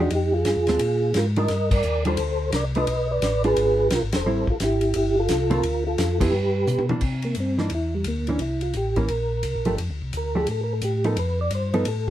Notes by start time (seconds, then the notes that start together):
0.00 F3 G#3 D4 D#4 F#4 G4
0.10 F2 D#4, ride
0.15 G4
0.34 F4 G#4
0.45 G2, snare, hi-hat pedal, ride
0.57 F2
0.67 D#2 G#3 C4 D4, snare, ride
0.79 A#2, ride
1.14 G#2 F4 A#4, snare, hi-hat pedal, ride
1.36 D#3 G3 D4 F4 A#4 D#5, ride
1.48 G2, snare, ride
1.71 A#4 D5, kick, crash
1.82 D#2, hi-hat pedal
2.05 D#3 G3 D4 F4 A4 C5, ride
2.17 D2, ride
2.52 C2 A#4 D5, snare, hi-hat pedal, ride
2.75 A3 D4 F4 B4 D#5, ride
2.87 B1, ride
3.11 B4 D5
3.21 A1, snare, hi-hat pedal, ride
3.44 G#3 D4 F4 G#4 B4, ride
3.56 G#1, ride
3.90 B1 F4 A#4, snare, hi-hat pedal, ride
4.02 G#1
4.12 E1 A4 C5, snare, ride
4.26 A1 G3 C4 E4
4.47 A1 F4, kick
4.51 A4
4.60 G#1 E4, snare, hi-hat pedal, ride
4.64 G4
4.81 ride
4.94 G1 E4 G4, ride
5.19 F4 A4
5.29 C2, snare, hi-hat pedal, ride
5.50 D3 A3 C4 F4 A#4, ride
5.63 D2, ride
5.87 F4 A4
5.98 F2, snare, hi-hat pedal, ride
6.20 F3 B3 E4 G4 B4, kick, crash
6.33 G2
6.67 B2, hi-hat pedal, high tom
6.79 high tom
6.89 E3 A#3 D4, high tom
7.01 C3, kick, crash
7.22 A#3, ride
7.35 G2, hi-hat pedal, ride
7.40 C4
7.58 E3 A#3 D4 D#4, snare
7.70 E2, ride
7.75 E4
7.95 G3
8.04 D2 A#3, hi-hat pedal, ride
8.27 E3 A#3 C#4 D4, ride
8.39 C2 E4, ride
8.61 F4, ride
8.74 A1 G4, hi-hat pedal, ride
8.96 E3 A#3 C#4 A#4, kick, ride
9.08 A#1, ride
9.43 C2, hi-hat pedal, ride
9.55 A#1
9.65 G1 F3 A3 D4 G4, ride
9.78 F2, ride
9.90 D2
10.02 C2
10.13 D2, hi-hat pedal, ride
10.17 A#4
10.35 F3 A3 D4 G4 G#4
10.47 A2, ride
10.51 A4
10.64 A#4
10.73 A4
10.82 A2 G4, hi-hat pedal, ride
11.04 F3 B3 D#4 A4 A#4, ride
11.17 F2 B4, ride
11.41 D5
11.51 G2, hi-hat pedal, ride
11.55 C5
11.74 F3 B3 D#4 A4 B4, ride
11.85 A2 A4, ride